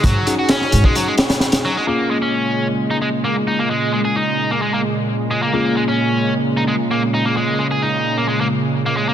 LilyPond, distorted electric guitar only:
\new Staff \with { instrumentName = "Distorted electric guitar" } { \time 4/4 \key bes \minor \tempo 4 = 131 ges8 ges16 ges'16 des'8. aes16 ges16 aes16 r4 ges16 aes16 | bes8 aes16 des'4 r8 ees'16 aes16 r16 bes16 r16 ees'16 bes16 | aes8 aes16 aes'16 ees'8. bes16 aes16 bes16 r4 aes16 bes16 | bes8 aes16 des'4 r8 ees'16 aes16 r16 bes16 r16 ees'16 bes16 |
aes8 aes16 aes'16 ees'8. bes16 aes16 bes16 r8. bes16 aes16 bes16 | }